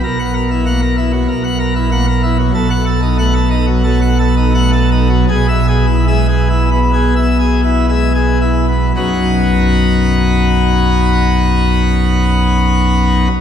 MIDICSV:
0, 0, Header, 1, 2, 480
1, 0, Start_track
1, 0, Key_signature, 5, "major"
1, 0, Tempo, 623701
1, 33, Time_signature, 4, 2, 24, 8
1, 1953, Tempo, 652884
1, 2913, Tempo, 720288
1, 3873, Tempo, 790514
1, 4353, Tempo, 853485
1, 4833, Tempo, 949367
1, 5313, Tempo, 1075269
1, 5793, Tempo, 1125704
1, 7692, End_track
2, 0, Start_track
2, 0, Title_t, "Pipe organ"
2, 0, Program_c, 0, 19
2, 26, Note_on_c, 0, 35, 87
2, 26, Note_on_c, 0, 70, 84
2, 28, Note_on_c, 0, 47, 93
2, 136, Note_off_c, 0, 70, 0
2, 145, Note_on_c, 0, 78, 106
2, 255, Note_off_c, 0, 78, 0
2, 264, Note_on_c, 0, 70, 81
2, 374, Note_off_c, 0, 70, 0
2, 393, Note_on_c, 0, 64, 76
2, 498, Note_off_c, 0, 64, 0
2, 506, Note_on_c, 0, 78, 81
2, 507, Note_on_c, 0, 58, 75
2, 614, Note_off_c, 0, 78, 0
2, 615, Note_off_c, 0, 58, 0
2, 627, Note_on_c, 0, 70, 90
2, 735, Note_off_c, 0, 70, 0
2, 750, Note_on_c, 0, 64, 84
2, 856, Note_off_c, 0, 64, 0
2, 867, Note_on_c, 0, 54, 79
2, 970, Note_off_c, 0, 35, 0
2, 970, Note_off_c, 0, 47, 0
2, 974, Note_off_c, 0, 54, 0
2, 985, Note_on_c, 0, 47, 84
2, 986, Note_on_c, 0, 35, 87
2, 986, Note_on_c, 0, 70, 77
2, 1094, Note_off_c, 0, 70, 0
2, 1106, Note_on_c, 0, 78, 82
2, 1213, Note_off_c, 0, 78, 0
2, 1227, Note_on_c, 0, 70, 92
2, 1334, Note_off_c, 0, 70, 0
2, 1352, Note_on_c, 0, 64, 86
2, 1458, Note_off_c, 0, 64, 0
2, 1475, Note_on_c, 0, 58, 83
2, 1475, Note_on_c, 0, 78, 92
2, 1580, Note_off_c, 0, 58, 0
2, 1580, Note_off_c, 0, 78, 0
2, 1596, Note_on_c, 0, 70, 100
2, 1702, Note_off_c, 0, 70, 0
2, 1717, Note_on_c, 0, 64, 89
2, 1823, Note_off_c, 0, 64, 0
2, 1838, Note_on_c, 0, 54, 89
2, 1924, Note_off_c, 0, 35, 0
2, 1924, Note_off_c, 0, 47, 0
2, 1939, Note_off_c, 0, 54, 0
2, 1957, Note_on_c, 0, 35, 106
2, 1958, Note_on_c, 0, 47, 102
2, 1959, Note_on_c, 0, 69, 90
2, 2061, Note_off_c, 0, 69, 0
2, 2072, Note_on_c, 0, 78, 126
2, 2176, Note_off_c, 0, 78, 0
2, 2190, Note_on_c, 0, 69, 94
2, 2295, Note_off_c, 0, 69, 0
2, 2308, Note_on_c, 0, 63, 86
2, 2413, Note_off_c, 0, 63, 0
2, 2427, Note_on_c, 0, 57, 89
2, 2429, Note_on_c, 0, 78, 89
2, 2533, Note_off_c, 0, 57, 0
2, 2534, Note_off_c, 0, 78, 0
2, 2540, Note_on_c, 0, 69, 106
2, 2650, Note_off_c, 0, 69, 0
2, 2661, Note_on_c, 0, 63, 94
2, 2773, Note_off_c, 0, 63, 0
2, 2782, Note_on_c, 0, 54, 96
2, 2895, Note_off_c, 0, 54, 0
2, 2909, Note_on_c, 0, 54, 85
2, 2909, Note_on_c, 0, 69, 100
2, 3013, Note_off_c, 0, 69, 0
2, 3014, Note_off_c, 0, 54, 0
2, 3025, Note_on_c, 0, 78, 105
2, 3130, Note_off_c, 0, 78, 0
2, 3142, Note_on_c, 0, 69, 105
2, 3248, Note_off_c, 0, 69, 0
2, 3262, Note_on_c, 0, 63, 93
2, 3368, Note_off_c, 0, 63, 0
2, 3381, Note_on_c, 0, 78, 109
2, 3382, Note_on_c, 0, 57, 92
2, 3488, Note_off_c, 0, 78, 0
2, 3489, Note_off_c, 0, 57, 0
2, 3501, Note_on_c, 0, 69, 105
2, 3610, Note_off_c, 0, 69, 0
2, 3625, Note_on_c, 0, 63, 99
2, 3735, Note_off_c, 0, 63, 0
2, 3744, Note_on_c, 0, 54, 105
2, 3849, Note_off_c, 0, 35, 0
2, 3849, Note_off_c, 0, 47, 0
2, 3853, Note_off_c, 0, 54, 0
2, 3876, Note_on_c, 0, 47, 114
2, 3878, Note_on_c, 0, 35, 116
2, 3878, Note_on_c, 0, 68, 101
2, 3981, Note_off_c, 0, 68, 0
2, 3994, Note_on_c, 0, 76, 127
2, 4099, Note_off_c, 0, 76, 0
2, 4111, Note_on_c, 0, 68, 111
2, 4219, Note_off_c, 0, 68, 0
2, 4228, Note_on_c, 0, 64, 90
2, 4339, Note_off_c, 0, 64, 0
2, 4354, Note_on_c, 0, 76, 103
2, 4356, Note_on_c, 0, 56, 95
2, 4458, Note_off_c, 0, 76, 0
2, 4459, Note_off_c, 0, 56, 0
2, 4471, Note_on_c, 0, 68, 104
2, 4577, Note_off_c, 0, 68, 0
2, 4591, Note_on_c, 0, 64, 107
2, 4698, Note_off_c, 0, 64, 0
2, 4713, Note_on_c, 0, 59, 91
2, 4823, Note_off_c, 0, 59, 0
2, 4837, Note_on_c, 0, 59, 86
2, 4837, Note_on_c, 0, 68, 89
2, 4938, Note_off_c, 0, 59, 0
2, 4938, Note_off_c, 0, 68, 0
2, 4950, Note_on_c, 0, 76, 90
2, 5055, Note_off_c, 0, 76, 0
2, 5069, Note_on_c, 0, 68, 91
2, 5176, Note_off_c, 0, 68, 0
2, 5193, Note_on_c, 0, 64, 93
2, 5303, Note_off_c, 0, 64, 0
2, 5318, Note_on_c, 0, 76, 88
2, 5319, Note_on_c, 0, 56, 81
2, 5419, Note_off_c, 0, 56, 0
2, 5419, Note_off_c, 0, 76, 0
2, 5434, Note_on_c, 0, 68, 90
2, 5538, Note_off_c, 0, 68, 0
2, 5553, Note_on_c, 0, 64, 84
2, 5660, Note_off_c, 0, 64, 0
2, 5675, Note_on_c, 0, 59, 78
2, 5777, Note_off_c, 0, 35, 0
2, 5777, Note_off_c, 0, 47, 0
2, 5778, Note_off_c, 0, 59, 0
2, 5797, Note_on_c, 0, 42, 71
2, 5798, Note_on_c, 0, 63, 68
2, 5799, Note_on_c, 0, 35, 87
2, 5799, Note_on_c, 0, 54, 64
2, 5799, Note_on_c, 0, 59, 67
2, 5799, Note_on_c, 0, 66, 68
2, 7635, Note_off_c, 0, 42, 0
2, 7635, Note_off_c, 0, 63, 0
2, 7636, Note_off_c, 0, 35, 0
2, 7636, Note_off_c, 0, 54, 0
2, 7637, Note_off_c, 0, 59, 0
2, 7637, Note_off_c, 0, 66, 0
2, 7692, End_track
0, 0, End_of_file